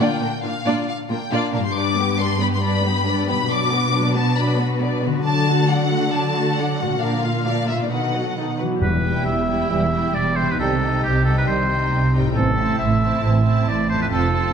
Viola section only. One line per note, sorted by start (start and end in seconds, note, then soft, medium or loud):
0.00 0.19 A#3 soft
0.00 0.20 D4 soft
0.21 0.29 A#3 soft
0.21 0.29 D4 soft
0.44 0.52 A#3 soft
0.44 0.52 D4 soft
0.66 0.86 A#3 soft
0.66 0.86 D4 soft
1.11 1.19 A#3 soft
1.11 1.19 D4 soft
1.30 1.51 A#3 soft
1.30 1.51 D4 medium
1.53 1.61 A#3 soft
1.53 1.61 D4 soft
1.75 1.95 G3 soft
1.75 1.95 D4 soft
1.96 2.18 B3 soft
2.19 2.40 G3 soft
2.19 2.40 D4 soft
2.39 2.62 B3 soft
2.61 2.82 G3 soft
2.61 2.82 D4 soft
2.84 3.06 B3 soft
3.05 3.27 G3 soft
3.05 3.27 D4 soft
3.27 3.49 B3 soft
3.50 3.70 F#3 soft
3.50 3.70 D4 soft
3.71 3.93 B3 soft
3.93 4.15 F#3 soft
3.93 4.15 D4 soft
4.15 4.37 B3 soft
4.38 4.58 F#3 soft
4.38 4.58 D4 soft
4.58 4.80 B3 soft
4.81 5.03 F#3 soft
4.81 5.03 D4 soft
5.03 5.25 B3 soft
5.26 5.46 F#3 soft
5.26 5.46 D4 soft
5.48 5.70 A3 soft
5.48 5.69 F#4 soft
5.70 5.92 F#3 soft
5.70 5.91 D4 soft
5.91 6.13 A3 soft
5.91 6.13 F#4 soft
6.13 6.33 F#3 soft
6.13 6.33 D4 soft
6.34 6.56 A3 soft
6.34 6.57 F#4 soft
6.57 6.79 F#3 soft
6.57 6.79 D4 soft
6.80 7.01 A3 soft
6.80 7.01 F#4 soft
7.00 7.21 F3 soft
7.00 7.21 D4 soft
7.22 7.45 A#3 soft
7.22 7.45 F4 soft
7.46 7.68 F3 soft
7.46 7.68 D4 soft
7.67 7.91 A#3 soft
7.67 7.90 F4 soft
7.91 8.12 D#3 soft
7.91 8.12 D#4 soft
8.14 8.36 F#3 soft
8.14 8.36 F#4 soft
8.37 8.59 D#3 soft
8.37 8.59 D#4 soft
8.59 8.81 F#3 soft
8.59 8.81 F#4 soft
9.04 9.47 G3 soft
9.48 9.91 G3 soft
9.93 10.36 G3 soft
10.37 10.58 G3 soft
10.59 10.81 G3 soft
10.82 11.25 G3 soft
11.27 11.68 G3 soft
11.70 12.12 G3 soft
12.14 12.35 G3 soft
12.57 13.00 C4 soft
13.02 13.43 C4 soft
13.44 13.88 C4 soft
13.89 14.08 C4 soft
14.10 14.30 C4 soft
14.31 14.53 C4 soft